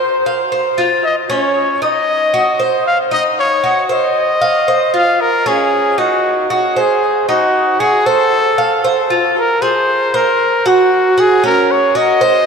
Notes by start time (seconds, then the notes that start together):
Already playing: C5
0.26 F5
0.52 C5
0.78 F4
1.04 D#5
1.30 C#4 C#5
1.82 D#4 D#5
2.34 F#4
2.60 C5
2.87 F5
3.11 D#4 D#5
3.39 C#5
3.64 F#4
3.89 C5 D#5
4.41 F5
4.68 C5
4.94 F4 F5
5.21 A#4
5.46 C#4 G#4
5.98 D#4 F#4
6.50 F#4
6.76 G#4 C5
7.29 D#4 F#4
7.80 F#4 G#4
8.06 A4 C5
8.58 F5
8.84 C5
9.10 F4
9.37 A#4
9.62 G#4 C5
10.14 A#4 C5
10.66 F#4
11.18 F#4 G#4
11.44 C#4 A#4
11.71 C#5
11.95 F#4 D#5
12.21 C5